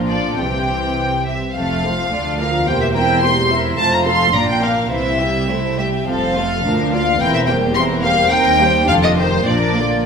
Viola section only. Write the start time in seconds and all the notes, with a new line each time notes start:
Already playing: F3 D4
0.39 E3 C4
1.57 A3 C4
1.85 F3 A3
2.13 D3 D4
2.40 F3 F4
2.68 A#3 G4
2.96 C4 E4
3.23 A#3 G4
3.51 C4 E4
3.79 A3 F4
4.07 C4 A4
4.34 D4 F4
4.63 A#3 D4
4.92 E3 C4
5.20 G3 E4
5.49 A3
5.79 G3
6.07 F3 C4
6.36 A3
6.66 F3 D4
6.92 A#3 F4
7.21 E3 C4
7.49 G3 A#3
7.76 E3 C4
8.03 G3 A#3
8.32 A#3 C4
8.60 G3 A#3
8.88 D3 D4
9.17 D#3 D#4
9.46 F3 D4
9.76 D3 A#3